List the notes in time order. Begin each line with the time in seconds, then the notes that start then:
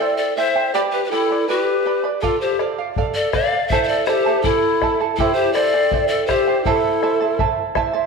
Already playing: A4 D5
0.00 E4 C5 E5 G5
0.17 A4 D5
0.36 E4 C5 E5 G5
0.56 E4 C5 G5
0.74 G4 B4 D5 G5 B5
0.92 G4 B4
1.04 G4 B4
1.11 E4 A4 B4 D5 G5 B5
1.31 B4 D5 B5
1.48 F#4 B4 D5 G5 B5
1.60 G4
1.85 B4 D5 G5 B5
2.04 B4 D5 B5
2.21 F4 A4 D5 F5, bombo low
2.41 G4 C5
2.59 A4 D5 F5, bombo rim
2.78 D5 F5
2.96 A4 D5 F5, bombo low
3.14 A4 D5
3.32 A4 D5 F5, bombo rim, bombo low
3.53 D5 F5
3.68 C5 E5, bombo low
3.72 E4 A4 E5 A5
3.83 C5 D5 E5
3.89 A4
4.05 E4 G4 A4 C5 E5 A5, bombo rim
4.26 E4 A4 A5
4.42 E4 A4 E5, bombo low
4.46 A4 A5
4.82 E4 A4 E5 A5, bombo rim, bombo low
5.01 E4 A4 A5
5.16 E4 G4 A4 E5, bombo low
5.21 C5 G5
5.33 G4 C5
5.53 E4 A4 C5 D5 E5 G5, bombo rim
5.74 E4 C5 G5
5.91 E4 C5 E5 G5, bombo low
6.08 A4 D5
6.26 E4 G4 C5 E5, bombo rim, bombo low
6.30 C5 G5
6.47 E4 C5 G5
6.64 E4 A4 C5 E5 A5, bombo low
7.03 E4 C5 E5 A5, bombo rim
7.21 E4 C5 A5
7.39 E4 C5 E5 A5, bombo low
7.75 E4 C5 E5 A5, bombo rim, bombo low
7.93 E4 C5 A5